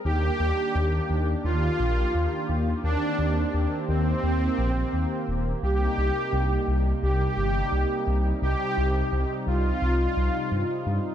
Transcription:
0.05 detuned saw bass D#2, analog synth pad D#3 A#3 D4 G4, supersaw synth G4
0.40 detuned saw bass D#2
0.75 detuned saw bass D#2
1.10 detuned saw bass D#2
1.44 detuned saw bass D#2, supersaw synth F4
1.80 detuned saw bass A#1
2.14 detuned saw bass D#2
2.49 detuned saw bass D#2
2.84 detuned saw bass D#2, analog synth pad C4, supersaw synth D4
3.19 detuned saw bass D#2
3.54 detuned saw bass D#2
3.89 detuned saw bass D#2, supersaw synth C4
4.23 detuned saw bass D#2
4.58 detuned saw bass A#1
4.93 detuned saw bass D#2
5.28 detuned saw bass D#1
5.63 detuned saw bass C2, analog synth pad C3 G3 D#4, supersaw synth G4
5.98 detuned saw bass C2
6.33 detuned saw bass C2
6.68 detuned saw bass C2
7.02 detuned saw bass C2, supersaw synth G4
7.37 detuned saw bass G1
7.72 detuned saw bass C2
8.07 detuned saw bass C2
8.42 detuned saw bass C2, analog synth pad C4, supersaw synth G4
8.77 detuned saw bass C2
9.12 detuned saw bass C2
9.47 detuned saw bass C2, supersaw synth F4
9.82 detuned saw bass C2
10.17 detuned saw bass C2
10.52 detuned saw bass G2
10.86 detuned saw bass G2

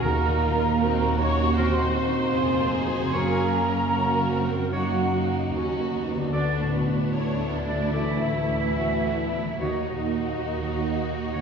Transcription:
Already playing: harp D#3 D#4 A#4
0.01 double bass section D#2, cello section D#2, grand piano D#2, french horn section A#3, violin section A#3 D#4 F#4, clarinet F#4, viola section A#4, oboe A#4, flute section A#5
0.28 grand piano A#2
0.41 violin section F4
0.54 grand piano D#4
0.80 violin section C4 D#4 F#4, grand piano F#4
1.05 grand piano A#4
1.18 violin section A#3, french horn section C#4, viola section C#5, flute section C#6
1.30 grand piano F#4
1.56 grand piano D#2, violin section C4 D#4, french horn section C4, clarinet F#4, oboe A#4, viola section C5, flute section C6
1.82 grand piano A#2
1.96 violin section A#3
2.08 grand piano D#4
2.35 double bass section F1, cello section F2, grand piano D#4, violin section F4 G#4
2.61 grand piano A#4
2.75 violin section D#4
2.88 grand piano F#4
2.96 harp F#2
3.01 harp C#3
3.05 harp F#4
3.09 clarinet F#4, harp A#4, oboe C#5
3.14 double bass section F#1, cello section F#2, grand piano F#2, violin section A#3 C#4, french horn section A#3, viola section A#4, flute section A#5
3.41 grand piano C#3
3.54 violin section C#4
3.69 grand piano C#4
3.93 violin section C#4 F#4, grand piano F#4
4.20 grand piano A#4
4.33 violin section C4
4.47 grand piano F#4
4.72 grand piano F#2, french horn section F#3, violin section A#3 D#4, clarinet F#4, viola section F#4, oboe C#5, flute section F#5
5.00 grand piano C#3
5.14 violin section A#3
5.26 grand piano C#4
5.53 double bass section D#2, cello section D#2, violin section C#4 F#4, grand piano F#4
5.80 grand piano A#4
5.94 violin section B3
6.07 grand piano F#4
6.15 harp D3 D4
6.23 harp E4
6.28 harp A4, clarinet A4, flute section D5
6.32 cello section D2, grand piano D2, double bass section D2, french horn section D3, violin section D4 F#4, viola section D4, oboe D5
6.60 grand piano A2
6.73 french horn section B2, viola section B3, flute section B4
6.86 grand piano D4
7.12 french horn section D3, grand piano E4, violin section E4, flute section C#5, viola section C#5
7.40 grand piano A4
7.51 french horn section D3, viola section D4, flute section D5
7.66 grand piano E4
7.92 grand piano D2, french horn section E3, violin section A3, viola section E4, clarinet A4, oboe D5, flute section E5
8.19 grand piano A2
8.49 grand piano D4
8.76 violin section B3 D4 F#4, grand piano E4
9.05 grand piano A4
9.19 violin section E4
9.33 grand piano E4
9.44 harp D#3
9.48 harp A#3
9.53 harp F#3
9.57 double bass section D#2, french horn section D#3, violin section A#3 F#4, clarinet F#4, harp C#5
9.61 cello section D#2, grand piano D#2, viola section D#4, violin section F#4, oboe C#5, flute section D#5
9.91 grand piano A#2
10.21 grand piano A#3
10.49 grand piano F#4
10.78 grand piano C#5
11.06 grand piano F#4
11.33 grand piano D#2, clarinet F#4, oboe C#5

